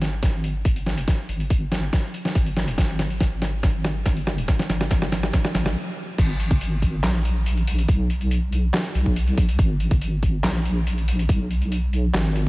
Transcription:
Already playing: G#1
0.01 snare, closed hi-hat
0.23 kick, snare, closed hi-hat
0.44 closed hi-hat
0.65 G#1, kick, closed hi-hat
0.76 closed hi-hat
0.86 snare
0.98 closed hi-hat
1.08 kick, snare, closed hi-hat
1.29 G#1, closed hi-hat
1.40 closed hi-hat
1.50 kick, closed hi-hat
1.72 snare, closed hi-hat
1.93 kick, snare, closed hi-hat
2.14 closed hi-hat
2.25 snare
2.35 G#1, kick, closed hi-hat
2.46 closed hi-hat
2.57 snare
2.68 closed hi-hat
2.78 G#1, kick, snare, closed hi-hat
2.99 snare, closed hi-hat
3.10 closed hi-hat
3.20 kick, snare, closed hi-hat
3.42 snare, closed hi-hat
3.63 kick, snare, closed hi-hat
3.84 snare, closed hi-hat
4.06 G#1, kick, snare, closed hi-hat
4.17 closed hi-hat
4.27 snare
4.38 closed hi-hat
4.48 kick, snare, closed hi-hat
4.59 snare
4.69 G#1, snare, closed hi-hat
4.81 snare, closed hi-hat
4.91 kick, snare, closed hi-hat
5.02 snare
5.12 snare, closed hi-hat
5.23 snare
5.33 kick, snare, closed hi-hat
5.44 snare
5.55 G#1, snare, closed hi-hat
5.66 snare
6.18 G#1, kick, closed hi-hat, crash
6.40 closed hi-hat
6.51 kick, closed hi-hat
6.61 closed hi-hat
6.82 kick, closed hi-hat
7.03 A#1, snare, clap, closed hi-hat
7.25 closed hi-hat
7.46 closed hi-hat
7.57 closed hi-hat
7.68 open hi-hat
7.78 closed hi-hat
7.89 B1, kick, closed hi-hat
8.10 closed hi-hat
8.21 closed hi-hat
8.31 closed hi-hat
8.52 closed hi-hat
8.74 snare, clap, closed hi-hat
8.95 B1, closed hi-hat
9.06 kick
9.16 closed hi-hat
9.27 closed hi-hat
9.38 kick, open hi-hat
9.49 closed hi-hat
9.59 G#1, kick, closed hi-hat
9.80 closed hi-hat
9.91 kick, closed hi-hat
10.01 closed hi-hat
10.23 kick, closed hi-hat
10.44 A#1, snare, clap, closed hi-hat
10.65 closed hi-hat
10.87 closed hi-hat
10.98 closed hi-hat
11.08 open hi-hat
11.19 closed hi-hat
11.29 B1, kick, closed hi-hat
11.51 closed hi-hat
11.62 closed hi-hat
11.72 closed hi-hat
11.93 closed hi-hat
12.14 G#1, snare, clap, closed hi-hat
12.36 closed hi-hat

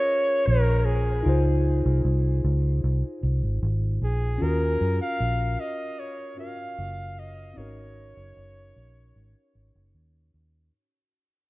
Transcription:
Already playing: C#4 F4 G#4 A#4 C#5
0.46 A#1 A#4
0.85 G#4
1.23 C#2 D#4 F4
1.27 G#4 C5
1.86 C2
2.05 C2
2.44 C#2
2.84 C2
3.23 C2
3.43 G#1
3.62 G#1
4.01 A#1 G#4
4.38 D#2 C#4 F4 F#4
4.42 A#4
4.81 F#2
5.01 F5
5.20 A#1
5.60 D#5
6.00 C#5
6.37 C#4 F4 F#4 A#4 F5
6.78 F#1
7.19 D#5
7.54 G#1 C4 D#4 C#5
7.58 C#4 F#4 A#4
8.17 F#1
8.37 F#1
8.76 A#1
9.16 G#1
9.55 G#1
9.75 F#1
9.95 D#2
10.34 D#2

